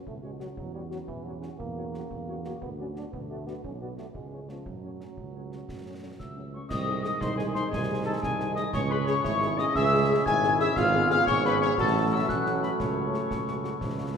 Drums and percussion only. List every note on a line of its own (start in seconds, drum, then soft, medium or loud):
0.07 concert bass drum soft
0.40 snare soft
0.57 concert bass drum medium
0.91 snare soft
1.08 concert bass drum soft
1.42 snare soft
1.60 concert bass drum medium
1.94 snare soft
2.11 concert bass drum medium
2.44 snare soft
2.62 concert bass drum medium
2.96 snare soft
3.13 concert bass drum medium
3.48 snare soft
3.64 concert bass drum medium
3.98 snare soft
4.15 concert bass drum soft
4.49 snare soft
4.66 concert bass drum medium
5.01 snare soft
5.17 concert bass drum soft
5.52 snare soft
5.69 concert bass drum soft
5.69 snare soft
6.20 concert bass drum soft
6.20 snare soft
6.70 concert bass drum medium
6.70 snare medium
6.70 crash medium
7.04 snare medium
7.21 concert bass drum medium
7.21 snare medium
7.39 snare medium
7.55 snare medium
7.73 concert bass drum medium
7.73 snare medium
8.23 concert bass drum medium
8.23 snare medium
8.40 snare medium
8.56 snare medium
8.73 concert bass drum medium
8.73 snare medium
8.73 crash soft
9.07 snare medium
9.25 concert bass drum medium
9.25 snare medium
9.42 snare medium
9.59 snare medium
9.75 concert bass drum medium
9.75 snare medium
10.26 concert bass drum medium
10.26 snare medium
10.43 snare medium
10.59 snare medium
10.76 concert bass drum medium
10.76 snare medium
10.76 crash soft
11.10 snare medium
11.27 concert bass drum medium
11.27 snare medium
11.45 snare medium
11.62 snare medium
11.78 concert bass drum medium
11.78 snare medium
12.29 concert bass drum medium
12.29 snare medium
12.46 snare medium
12.63 snare medium
12.80 concert bass drum medium
12.80 snare medium
12.80 crash soft
13.14 snare medium
13.31 concert bass drum medium
13.31 snare medium
13.48 snare medium
13.64 snare medium
13.81 concert bass drum medium
13.81 snare medium